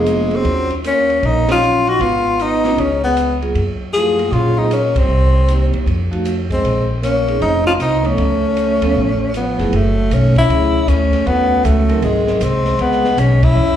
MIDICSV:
0, 0, Header, 1, 6, 480
1, 0, Start_track
1, 0, Tempo, 385852
1, 561, Time_signature, 4, 2, 24, 8
1, 17122, End_track
2, 0, Start_track
2, 0, Title_t, "Tenor saxophone"
2, 0, Program_c, 0, 66
2, 0, Note_on_c, 0, 56, 80
2, 445, Note_on_c, 0, 60, 88
2, 464, Note_off_c, 0, 56, 0
2, 900, Note_off_c, 0, 60, 0
2, 1079, Note_on_c, 0, 61, 82
2, 1563, Note_on_c, 0, 63, 73
2, 1581, Note_off_c, 0, 61, 0
2, 1855, Note_off_c, 0, 63, 0
2, 1881, Note_on_c, 0, 65, 86
2, 2351, Note_on_c, 0, 66, 84
2, 2370, Note_off_c, 0, 65, 0
2, 2502, Note_on_c, 0, 65, 83
2, 2521, Note_off_c, 0, 66, 0
2, 3001, Note_on_c, 0, 63, 74
2, 3020, Note_off_c, 0, 65, 0
2, 3487, Note_on_c, 0, 61, 72
2, 3506, Note_off_c, 0, 63, 0
2, 3770, Note_off_c, 0, 61, 0
2, 3778, Note_on_c, 0, 59, 70
2, 4217, Note_off_c, 0, 59, 0
2, 4891, Note_on_c, 0, 68, 86
2, 5378, Note_on_c, 0, 65, 82
2, 5397, Note_off_c, 0, 68, 0
2, 5698, Note_on_c, 0, 63, 76
2, 5716, Note_off_c, 0, 65, 0
2, 5859, Note_off_c, 0, 63, 0
2, 5886, Note_on_c, 0, 61, 76
2, 6197, Note_on_c, 0, 60, 81
2, 6215, Note_off_c, 0, 61, 0
2, 7142, Note_off_c, 0, 60, 0
2, 8119, Note_on_c, 0, 60, 83
2, 8551, Note_off_c, 0, 60, 0
2, 8758, Note_on_c, 0, 61, 86
2, 9194, Note_off_c, 0, 61, 0
2, 9225, Note_on_c, 0, 63, 80
2, 9511, Note_off_c, 0, 63, 0
2, 9537, Note_on_c, 0, 65, 88
2, 9610, Note_off_c, 0, 65, 0
2, 9722, Note_on_c, 0, 63, 77
2, 10033, Note_on_c, 0, 61, 80
2, 10052, Note_off_c, 0, 63, 0
2, 11626, Note_off_c, 0, 61, 0
2, 11648, Note_on_c, 0, 59, 65
2, 12133, Note_on_c, 0, 57, 80
2, 12151, Note_off_c, 0, 59, 0
2, 12607, Note_on_c, 0, 61, 78
2, 12626, Note_off_c, 0, 57, 0
2, 12900, Note_off_c, 0, 61, 0
2, 12912, Note_on_c, 0, 64, 92
2, 13537, Note_on_c, 0, 61, 77
2, 13556, Note_off_c, 0, 64, 0
2, 14017, Note_on_c, 0, 59, 87
2, 14036, Note_off_c, 0, 61, 0
2, 14484, Note_on_c, 0, 57, 83
2, 14503, Note_off_c, 0, 59, 0
2, 14964, Note_off_c, 0, 57, 0
2, 14972, Note_on_c, 0, 56, 71
2, 15454, Note_on_c, 0, 60, 80
2, 15473, Note_off_c, 0, 56, 0
2, 15938, Note_on_c, 0, 59, 92
2, 15957, Note_off_c, 0, 60, 0
2, 16410, Note_on_c, 0, 61, 82
2, 16428, Note_off_c, 0, 59, 0
2, 16717, Note_on_c, 0, 64, 93
2, 16736, Note_off_c, 0, 61, 0
2, 17122, Note_off_c, 0, 64, 0
2, 17122, End_track
3, 0, Start_track
3, 0, Title_t, "Vibraphone"
3, 0, Program_c, 1, 11
3, 0, Note_on_c, 1, 58, 62
3, 0, Note_on_c, 1, 59, 62
3, 0, Note_on_c, 1, 62, 68
3, 0, Note_on_c, 1, 68, 70
3, 522, Note_off_c, 1, 62, 0
3, 523, Note_off_c, 1, 58, 0
3, 523, Note_off_c, 1, 68, 0
3, 525, Note_off_c, 1, 59, 0
3, 554, Note_on_c, 1, 63, 51
3, 559, Note_on_c, 1, 54, 43
3, 560, Note_on_c, 1, 61, 46
3, 561, Note_on_c, 1, 65, 54
3, 838, Note_off_c, 1, 63, 0
3, 841, Note_off_c, 1, 54, 0
3, 842, Note_off_c, 1, 61, 0
3, 842, Note_off_c, 1, 65, 0
3, 2016, Note_on_c, 1, 54, 49
3, 2023, Note_on_c, 1, 63, 49
3, 2026, Note_on_c, 1, 61, 50
3, 2030, Note_on_c, 1, 65, 55
3, 2291, Note_off_c, 1, 54, 0
3, 2295, Note_off_c, 1, 63, 0
3, 2296, Note_off_c, 1, 61, 0
3, 2298, Note_off_c, 1, 65, 0
3, 3277, Note_on_c, 1, 62, 71
3, 3280, Note_on_c, 1, 59, 60
3, 3281, Note_on_c, 1, 61, 64
3, 3284, Note_on_c, 1, 65, 73
3, 3429, Note_off_c, 1, 62, 0
3, 3431, Note_off_c, 1, 59, 0
3, 3431, Note_off_c, 1, 61, 0
3, 3433, Note_off_c, 1, 65, 0
3, 4248, Note_on_c, 1, 58, 52
3, 4249, Note_on_c, 1, 65, 52
3, 4250, Note_on_c, 1, 54, 58
3, 4254, Note_on_c, 1, 68, 69
3, 4396, Note_off_c, 1, 58, 0
3, 4397, Note_off_c, 1, 54, 0
3, 4397, Note_off_c, 1, 65, 0
3, 4399, Note_off_c, 1, 68, 0
3, 4884, Note_on_c, 1, 64, 45
3, 4885, Note_on_c, 1, 57, 49
3, 4886, Note_on_c, 1, 53, 51
3, 4890, Note_on_c, 1, 67, 59
3, 5168, Note_off_c, 1, 64, 0
3, 5169, Note_off_c, 1, 53, 0
3, 5169, Note_off_c, 1, 57, 0
3, 5171, Note_off_c, 1, 67, 0
3, 5184, Note_on_c, 1, 58, 47
3, 5187, Note_on_c, 1, 54, 50
3, 5192, Note_on_c, 1, 68, 58
3, 5194, Note_on_c, 1, 65, 50
3, 5611, Note_off_c, 1, 58, 0
3, 5613, Note_off_c, 1, 54, 0
3, 5616, Note_off_c, 1, 68, 0
3, 5617, Note_off_c, 1, 65, 0
3, 5678, Note_on_c, 1, 54, 57
3, 5679, Note_on_c, 1, 58, 53
3, 5681, Note_on_c, 1, 65, 56
3, 5689, Note_on_c, 1, 68, 66
3, 5832, Note_off_c, 1, 54, 0
3, 5833, Note_off_c, 1, 58, 0
3, 5834, Note_off_c, 1, 65, 0
3, 5838, Note_off_c, 1, 68, 0
3, 6813, Note_on_c, 1, 63, 49
3, 6816, Note_on_c, 1, 58, 51
3, 6818, Note_on_c, 1, 60, 48
3, 6821, Note_on_c, 1, 67, 56
3, 7294, Note_off_c, 1, 63, 0
3, 7296, Note_off_c, 1, 58, 0
3, 7296, Note_off_c, 1, 60, 0
3, 7298, Note_off_c, 1, 67, 0
3, 7595, Note_on_c, 1, 53, 64
3, 7602, Note_on_c, 1, 57, 53
3, 7607, Note_on_c, 1, 63, 59
3, 7608, Note_on_c, 1, 66, 67
3, 7752, Note_off_c, 1, 53, 0
3, 7755, Note_off_c, 1, 57, 0
3, 7758, Note_off_c, 1, 63, 0
3, 7758, Note_off_c, 1, 66, 0
3, 9043, Note_on_c, 1, 60, 53
3, 9043, Note_on_c, 1, 61, 56
3, 9047, Note_on_c, 1, 63, 61
3, 9057, Note_on_c, 1, 68, 64
3, 9196, Note_off_c, 1, 60, 0
3, 9196, Note_off_c, 1, 61, 0
3, 9199, Note_off_c, 1, 63, 0
3, 9203, Note_off_c, 1, 68, 0
3, 9991, Note_on_c, 1, 59, 54
3, 9995, Note_on_c, 1, 61, 56
3, 9998, Note_on_c, 1, 53, 55
3, 10000, Note_on_c, 1, 69, 70
3, 10150, Note_off_c, 1, 59, 0
3, 10152, Note_off_c, 1, 61, 0
3, 10154, Note_off_c, 1, 53, 0
3, 10154, Note_off_c, 1, 69, 0
3, 10972, Note_on_c, 1, 53, 72
3, 10972, Note_on_c, 1, 61, 65
3, 10975, Note_on_c, 1, 59, 70
3, 10978, Note_on_c, 1, 69, 79
3, 11120, Note_off_c, 1, 53, 0
3, 11120, Note_off_c, 1, 61, 0
3, 11122, Note_off_c, 1, 59, 0
3, 11123, Note_off_c, 1, 69, 0
3, 11921, Note_on_c, 1, 64, 56
3, 11922, Note_on_c, 1, 54, 59
3, 11923, Note_on_c, 1, 57, 53
3, 11927, Note_on_c, 1, 68, 65
3, 12074, Note_off_c, 1, 64, 0
3, 12075, Note_off_c, 1, 54, 0
3, 12075, Note_off_c, 1, 57, 0
3, 12077, Note_off_c, 1, 68, 0
3, 13060, Note_on_c, 1, 54, 49
3, 13064, Note_on_c, 1, 61, 46
3, 13064, Note_on_c, 1, 64, 51
3, 13064, Note_on_c, 1, 68, 54
3, 13066, Note_on_c, 1, 57, 48
3, 13335, Note_off_c, 1, 54, 0
3, 13337, Note_off_c, 1, 61, 0
3, 13337, Note_off_c, 1, 64, 0
3, 13337, Note_off_c, 1, 68, 0
3, 13338, Note_off_c, 1, 57, 0
3, 14011, Note_on_c, 1, 54, 49
3, 14012, Note_on_c, 1, 57, 47
3, 14012, Note_on_c, 1, 63, 48
3, 14017, Note_on_c, 1, 61, 46
3, 14020, Note_on_c, 1, 69, 57
3, 14737, Note_off_c, 1, 54, 0
3, 14737, Note_off_c, 1, 57, 0
3, 14737, Note_off_c, 1, 63, 0
3, 14740, Note_off_c, 1, 61, 0
3, 14741, Note_off_c, 1, 69, 0
3, 14788, Note_on_c, 1, 54, 75
3, 14793, Note_on_c, 1, 63, 65
3, 14795, Note_on_c, 1, 56, 64
3, 14799, Note_on_c, 1, 70, 79
3, 14801, Note_on_c, 1, 60, 71
3, 15405, Note_off_c, 1, 54, 0
3, 15408, Note_off_c, 1, 63, 0
3, 15409, Note_off_c, 1, 56, 0
3, 15411, Note_off_c, 1, 70, 0
3, 15412, Note_off_c, 1, 60, 0
3, 17122, End_track
4, 0, Start_track
4, 0, Title_t, "Trombone"
4, 0, Program_c, 2, 57
4, 0, Note_on_c, 2, 53, 69
4, 422, Note_on_c, 2, 54, 70
4, 441, Note_off_c, 2, 53, 0
4, 888, Note_off_c, 2, 54, 0
4, 1061, Note_on_c, 2, 58, 66
4, 1535, Note_off_c, 2, 58, 0
4, 1535, Note_on_c, 2, 58, 57
4, 1841, Note_off_c, 2, 58, 0
4, 1847, Note_on_c, 2, 61, 79
4, 2329, Note_on_c, 2, 63, 70
4, 2348, Note_off_c, 2, 61, 0
4, 2494, Note_on_c, 2, 59, 75
4, 2513, Note_off_c, 2, 63, 0
4, 2989, Note_off_c, 2, 59, 0
4, 2989, Note_on_c, 2, 59, 64
4, 3477, Note_on_c, 2, 56, 54
4, 3496, Note_off_c, 2, 59, 0
4, 3775, Note_off_c, 2, 56, 0
4, 3796, Note_on_c, 2, 56, 56
4, 4226, Note_off_c, 2, 56, 0
4, 4919, Note_on_c, 2, 65, 72
4, 5398, Note_on_c, 2, 61, 64
4, 5417, Note_off_c, 2, 65, 0
4, 5703, Note_on_c, 2, 60, 65
4, 5722, Note_off_c, 2, 61, 0
4, 5862, Note_off_c, 2, 60, 0
4, 5867, Note_on_c, 2, 58, 61
4, 6180, Note_on_c, 2, 55, 68
4, 6198, Note_off_c, 2, 58, 0
4, 7133, Note_off_c, 2, 55, 0
4, 8090, Note_on_c, 2, 56, 72
4, 8535, Note_off_c, 2, 56, 0
4, 8731, Note_on_c, 2, 58, 71
4, 9179, Note_off_c, 2, 58, 0
4, 9207, Note_on_c, 2, 60, 62
4, 9501, Note_off_c, 2, 60, 0
4, 9525, Note_on_c, 2, 61, 78
4, 9601, Note_off_c, 2, 61, 0
4, 9688, Note_on_c, 2, 60, 68
4, 9993, Note_on_c, 2, 57, 76
4, 10012, Note_off_c, 2, 60, 0
4, 11606, Note_off_c, 2, 57, 0
4, 11624, Note_on_c, 2, 53, 57
4, 12119, Note_on_c, 2, 54, 64
4, 12138, Note_off_c, 2, 53, 0
4, 12599, Note_on_c, 2, 57, 61
4, 12618, Note_off_c, 2, 54, 0
4, 12896, Note_off_c, 2, 57, 0
4, 12903, Note_on_c, 2, 61, 73
4, 13561, Note_on_c, 2, 57, 62
4, 13580, Note_off_c, 2, 61, 0
4, 14012, Note_on_c, 2, 54, 69
4, 14031, Note_off_c, 2, 57, 0
4, 14509, Note_off_c, 2, 54, 0
4, 14509, Note_on_c, 2, 54, 68
4, 14963, Note_off_c, 2, 54, 0
4, 14971, Note_on_c, 2, 51, 55
4, 15432, Note_on_c, 2, 56, 66
4, 15450, Note_off_c, 2, 51, 0
4, 15914, Note_off_c, 2, 56, 0
4, 15914, Note_on_c, 2, 56, 77
4, 16391, Note_off_c, 2, 56, 0
4, 16391, Note_on_c, 2, 56, 70
4, 16695, Note_on_c, 2, 61, 81
4, 16714, Note_off_c, 2, 56, 0
4, 17122, Note_off_c, 2, 61, 0
4, 17122, End_track
5, 0, Start_track
5, 0, Title_t, "Upright bass"
5, 0, Program_c, 3, 32
5, 0, Note_on_c, 3, 29, 78
5, 511, Note_off_c, 3, 29, 0
5, 551, Note_on_c, 3, 39, 77
5, 1470, Note_off_c, 3, 39, 0
5, 1522, Note_on_c, 3, 34, 80
5, 2436, Note_off_c, 3, 34, 0
5, 2481, Note_on_c, 3, 32, 71
5, 3397, Note_off_c, 3, 32, 0
5, 3443, Note_on_c, 3, 37, 76
5, 4359, Note_off_c, 3, 37, 0
5, 4410, Note_on_c, 3, 42, 73
5, 5324, Note_off_c, 3, 42, 0
5, 5367, Note_on_c, 3, 46, 85
5, 6113, Note_off_c, 3, 46, 0
5, 6163, Note_on_c, 3, 37, 58
5, 6320, Note_off_c, 3, 37, 0
5, 6325, Note_on_c, 3, 36, 72
5, 7072, Note_off_c, 3, 36, 0
5, 7111, Note_on_c, 3, 40, 60
5, 7274, Note_off_c, 3, 40, 0
5, 7292, Note_on_c, 3, 41, 87
5, 8206, Note_off_c, 3, 41, 0
5, 8257, Note_on_c, 3, 34, 71
5, 9168, Note_off_c, 3, 34, 0
5, 9220, Note_on_c, 3, 29, 78
5, 9664, Note_off_c, 3, 29, 0
5, 9689, Note_on_c, 3, 36, 71
5, 10138, Note_off_c, 3, 36, 0
5, 10165, Note_on_c, 3, 37, 78
5, 10911, Note_off_c, 3, 37, 0
5, 10960, Note_on_c, 3, 38, 57
5, 11119, Note_off_c, 3, 38, 0
5, 11134, Note_on_c, 3, 33, 75
5, 11874, Note_off_c, 3, 33, 0
5, 11922, Note_on_c, 3, 29, 56
5, 12079, Note_off_c, 3, 29, 0
5, 12092, Note_on_c, 3, 30, 68
5, 12557, Note_off_c, 3, 30, 0
5, 12568, Note_on_c, 3, 35, 75
5, 13034, Note_off_c, 3, 35, 0
5, 13049, Note_on_c, 3, 37, 76
5, 13514, Note_off_c, 3, 37, 0
5, 13528, Note_on_c, 3, 38, 76
5, 13993, Note_off_c, 3, 38, 0
5, 14010, Note_on_c, 3, 39, 71
5, 14473, Note_off_c, 3, 39, 0
5, 14481, Note_on_c, 3, 37, 83
5, 14947, Note_off_c, 3, 37, 0
5, 14954, Note_on_c, 3, 32, 87
5, 15423, Note_off_c, 3, 32, 0
5, 15433, Note_on_c, 3, 36, 85
5, 15902, Note_off_c, 3, 36, 0
5, 15908, Note_on_c, 3, 37, 72
5, 16379, Note_off_c, 3, 37, 0
5, 16387, Note_on_c, 3, 35, 83
5, 16858, Note_off_c, 3, 35, 0
5, 16867, Note_on_c, 3, 40, 79
5, 17122, Note_off_c, 3, 40, 0
5, 17122, End_track
6, 0, Start_track
6, 0, Title_t, "Drums"
6, 78, Note_on_c, 9, 44, 47
6, 78, Note_on_c, 9, 51, 56
6, 203, Note_off_c, 9, 44, 0
6, 203, Note_off_c, 9, 51, 0
6, 384, Note_on_c, 9, 51, 36
6, 509, Note_off_c, 9, 51, 0
6, 556, Note_on_c, 9, 51, 52
6, 557, Note_on_c, 9, 36, 30
6, 680, Note_off_c, 9, 51, 0
6, 681, Note_off_c, 9, 36, 0
6, 876, Note_on_c, 9, 51, 41
6, 1000, Note_off_c, 9, 51, 0
6, 1049, Note_on_c, 9, 44, 56
6, 1049, Note_on_c, 9, 51, 61
6, 1173, Note_off_c, 9, 44, 0
6, 1173, Note_off_c, 9, 51, 0
6, 1367, Note_on_c, 9, 51, 38
6, 1492, Note_off_c, 9, 51, 0
6, 1526, Note_on_c, 9, 36, 29
6, 1531, Note_on_c, 9, 51, 49
6, 1650, Note_off_c, 9, 36, 0
6, 1655, Note_off_c, 9, 51, 0
6, 1846, Note_on_c, 9, 38, 70
6, 1848, Note_on_c, 9, 51, 57
6, 1970, Note_off_c, 9, 38, 0
6, 1973, Note_off_c, 9, 51, 0
6, 2017, Note_on_c, 9, 44, 54
6, 2141, Note_off_c, 9, 44, 0
6, 2328, Note_on_c, 9, 51, 36
6, 2452, Note_off_c, 9, 51, 0
6, 2488, Note_on_c, 9, 36, 29
6, 2495, Note_on_c, 9, 51, 51
6, 2613, Note_off_c, 9, 36, 0
6, 2620, Note_off_c, 9, 51, 0
6, 2978, Note_on_c, 9, 44, 43
6, 2978, Note_on_c, 9, 51, 57
6, 3103, Note_off_c, 9, 44, 0
6, 3103, Note_off_c, 9, 51, 0
6, 3293, Note_on_c, 9, 38, 41
6, 3295, Note_on_c, 9, 51, 41
6, 3417, Note_off_c, 9, 38, 0
6, 3420, Note_off_c, 9, 51, 0
6, 3451, Note_on_c, 9, 36, 28
6, 3461, Note_on_c, 9, 51, 51
6, 3576, Note_off_c, 9, 36, 0
6, 3585, Note_off_c, 9, 51, 0
6, 3940, Note_on_c, 9, 44, 51
6, 3940, Note_on_c, 9, 51, 58
6, 4064, Note_off_c, 9, 44, 0
6, 4064, Note_off_c, 9, 51, 0
6, 4258, Note_on_c, 9, 51, 37
6, 4382, Note_off_c, 9, 51, 0
6, 4413, Note_on_c, 9, 36, 27
6, 4419, Note_on_c, 9, 51, 50
6, 4537, Note_off_c, 9, 36, 0
6, 4544, Note_off_c, 9, 51, 0
6, 4902, Note_on_c, 9, 44, 52
6, 4902, Note_on_c, 9, 51, 58
6, 5027, Note_off_c, 9, 44, 0
6, 5027, Note_off_c, 9, 51, 0
6, 5214, Note_on_c, 9, 51, 41
6, 5338, Note_off_c, 9, 51, 0
6, 5376, Note_on_c, 9, 36, 29
6, 5382, Note_on_c, 9, 51, 52
6, 5501, Note_off_c, 9, 36, 0
6, 5507, Note_off_c, 9, 51, 0
6, 5858, Note_on_c, 9, 44, 51
6, 5858, Note_on_c, 9, 51, 55
6, 5982, Note_off_c, 9, 44, 0
6, 5982, Note_off_c, 9, 51, 0
6, 6165, Note_on_c, 9, 36, 68
6, 6167, Note_on_c, 9, 51, 66
6, 6290, Note_off_c, 9, 36, 0
6, 6292, Note_off_c, 9, 51, 0
6, 6822, Note_on_c, 9, 44, 51
6, 6822, Note_on_c, 9, 51, 55
6, 6946, Note_off_c, 9, 44, 0
6, 6946, Note_off_c, 9, 51, 0
6, 7133, Note_on_c, 9, 51, 40
6, 7258, Note_off_c, 9, 51, 0
6, 7296, Note_on_c, 9, 36, 30
6, 7305, Note_on_c, 9, 51, 48
6, 7420, Note_off_c, 9, 36, 0
6, 7430, Note_off_c, 9, 51, 0
6, 7620, Note_on_c, 9, 51, 40
6, 7745, Note_off_c, 9, 51, 0
6, 7778, Note_on_c, 9, 44, 47
6, 7778, Note_on_c, 9, 51, 56
6, 7903, Note_off_c, 9, 44, 0
6, 7903, Note_off_c, 9, 51, 0
6, 8088, Note_on_c, 9, 36, 36
6, 8091, Note_on_c, 9, 51, 40
6, 8212, Note_off_c, 9, 36, 0
6, 8216, Note_off_c, 9, 51, 0
6, 8259, Note_on_c, 9, 36, 31
6, 8268, Note_on_c, 9, 51, 52
6, 8383, Note_off_c, 9, 36, 0
6, 8393, Note_off_c, 9, 51, 0
6, 8749, Note_on_c, 9, 44, 54
6, 8749, Note_on_c, 9, 51, 62
6, 8873, Note_off_c, 9, 44, 0
6, 8873, Note_off_c, 9, 51, 0
6, 9060, Note_on_c, 9, 51, 40
6, 9184, Note_off_c, 9, 51, 0
6, 9219, Note_on_c, 9, 36, 29
6, 9224, Note_on_c, 9, 51, 54
6, 9343, Note_off_c, 9, 36, 0
6, 9348, Note_off_c, 9, 51, 0
6, 9700, Note_on_c, 9, 44, 53
6, 9700, Note_on_c, 9, 51, 68
6, 9825, Note_off_c, 9, 44, 0
6, 9825, Note_off_c, 9, 51, 0
6, 10008, Note_on_c, 9, 51, 38
6, 10133, Note_off_c, 9, 51, 0
6, 10175, Note_on_c, 9, 51, 51
6, 10176, Note_on_c, 9, 36, 32
6, 10299, Note_off_c, 9, 51, 0
6, 10300, Note_off_c, 9, 36, 0
6, 10656, Note_on_c, 9, 44, 54
6, 10656, Note_on_c, 9, 51, 54
6, 10781, Note_off_c, 9, 44, 0
6, 10781, Note_off_c, 9, 51, 0
6, 10971, Note_on_c, 9, 51, 59
6, 11095, Note_off_c, 9, 51, 0
6, 11134, Note_on_c, 9, 36, 32
6, 11258, Note_off_c, 9, 36, 0
6, 11618, Note_on_c, 9, 44, 49
6, 11618, Note_on_c, 9, 51, 53
6, 11743, Note_off_c, 9, 44, 0
6, 11743, Note_off_c, 9, 51, 0
6, 11931, Note_on_c, 9, 38, 29
6, 11933, Note_on_c, 9, 51, 36
6, 12055, Note_off_c, 9, 38, 0
6, 12058, Note_off_c, 9, 51, 0
6, 12096, Note_on_c, 9, 36, 22
6, 12101, Note_on_c, 9, 51, 56
6, 12221, Note_off_c, 9, 36, 0
6, 12225, Note_off_c, 9, 51, 0
6, 12574, Note_on_c, 9, 36, 18
6, 12579, Note_on_c, 9, 44, 53
6, 12579, Note_on_c, 9, 51, 62
6, 12699, Note_off_c, 9, 36, 0
6, 12704, Note_off_c, 9, 44, 0
6, 12704, Note_off_c, 9, 51, 0
6, 12883, Note_on_c, 9, 36, 48
6, 12890, Note_on_c, 9, 51, 41
6, 13008, Note_off_c, 9, 36, 0
6, 13014, Note_off_c, 9, 51, 0
6, 13053, Note_on_c, 9, 36, 21
6, 13063, Note_on_c, 9, 51, 59
6, 13178, Note_off_c, 9, 36, 0
6, 13187, Note_off_c, 9, 51, 0
6, 13531, Note_on_c, 9, 36, 22
6, 13534, Note_on_c, 9, 44, 60
6, 13534, Note_on_c, 9, 51, 67
6, 13655, Note_off_c, 9, 36, 0
6, 13658, Note_off_c, 9, 44, 0
6, 13658, Note_off_c, 9, 51, 0
6, 13840, Note_on_c, 9, 38, 30
6, 13843, Note_on_c, 9, 51, 41
6, 13965, Note_off_c, 9, 38, 0
6, 13967, Note_off_c, 9, 51, 0
6, 14010, Note_on_c, 9, 36, 20
6, 14016, Note_on_c, 9, 51, 54
6, 14134, Note_off_c, 9, 36, 0
6, 14140, Note_off_c, 9, 51, 0
6, 14485, Note_on_c, 9, 36, 20
6, 14489, Note_on_c, 9, 44, 55
6, 14489, Note_on_c, 9, 51, 62
6, 14610, Note_off_c, 9, 36, 0
6, 14614, Note_off_c, 9, 44, 0
6, 14614, Note_off_c, 9, 51, 0
6, 14795, Note_on_c, 9, 51, 41
6, 14920, Note_off_c, 9, 51, 0
6, 14956, Note_on_c, 9, 51, 58
6, 14959, Note_on_c, 9, 36, 19
6, 15081, Note_off_c, 9, 51, 0
6, 15084, Note_off_c, 9, 36, 0
6, 15266, Note_on_c, 9, 38, 44
6, 15391, Note_off_c, 9, 38, 0
6, 15435, Note_on_c, 9, 36, 17
6, 15435, Note_on_c, 9, 44, 62
6, 15435, Note_on_c, 9, 51, 69
6, 15559, Note_off_c, 9, 44, 0
6, 15559, Note_off_c, 9, 51, 0
6, 15560, Note_off_c, 9, 36, 0
6, 15735, Note_on_c, 9, 38, 42
6, 15860, Note_off_c, 9, 38, 0
6, 15909, Note_on_c, 9, 51, 52
6, 15913, Note_on_c, 9, 36, 17
6, 16034, Note_off_c, 9, 51, 0
6, 16037, Note_off_c, 9, 36, 0
6, 16065, Note_on_c, 9, 38, 28
6, 16189, Note_off_c, 9, 38, 0
6, 16228, Note_on_c, 9, 38, 43
6, 16352, Note_off_c, 9, 38, 0
6, 16394, Note_on_c, 9, 36, 22
6, 16395, Note_on_c, 9, 44, 56
6, 16395, Note_on_c, 9, 51, 64
6, 16518, Note_off_c, 9, 36, 0
6, 16519, Note_off_c, 9, 44, 0
6, 16519, Note_off_c, 9, 51, 0
6, 16704, Note_on_c, 9, 36, 81
6, 16705, Note_on_c, 9, 51, 72
6, 16829, Note_off_c, 9, 36, 0
6, 16830, Note_off_c, 9, 51, 0
6, 17122, End_track
0, 0, End_of_file